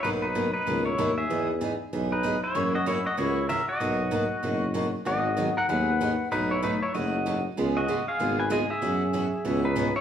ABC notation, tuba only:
X:1
M:4/4
L:1/8
Q:"Swing" 1/4=191
K:B
V:1 name="Tuba" clef=bass
B,,,4 C,,2 D,,2 | E,,4 B,,,4 | F,,4 C,,2 z2 | B,,,4 F,,,4 |
G,,,4 D,,4 | B,,,4 F,,,4 | C,,2 z2 G,,,4 | F,,4 C,,4 |]